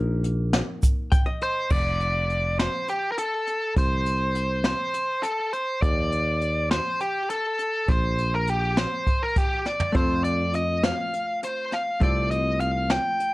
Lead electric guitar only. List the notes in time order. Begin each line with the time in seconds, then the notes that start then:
1.43 C5
1.72 D5
2.60 C5
2.90 G4
3.12 A#4
3.19 A4
3.78 C5
4.65 C5
5.23 A4
5.53 C5
5.82 D5
6.71 C5
7.01 G4
7.30 A4
7.89 C5
8.35 A#4
8.49 G4
8.78 C5
9.23 A#4
9.38 G4
9.66 D5
9.96 C5
10.24 D5
10.55 D#5
10.84 F5
11.44 C5
11.73 F5
12.03 D5
12.31 D#5
12.61 F5
12.91 G5